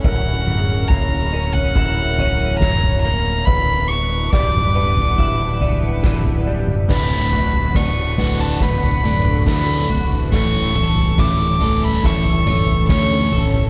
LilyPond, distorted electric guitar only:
\new Staff \with { instrumentName = "Distorted electric guitar" } { \clef bass \time 4/4 \key d \major \tempo 4 = 70 r1 | r1 | <d, a, d>8 <d, a,>8 <d, a,>8 <d, a, d>8 <d, a,>8 <d, a,>8 <d, a, d>8 <d, a,>8 | <a, e a>8 <a, e>8 <a, e>8 <a, e a>8 <a, e>8 <a, e>8 <a, e a>8 <a, e>8 | }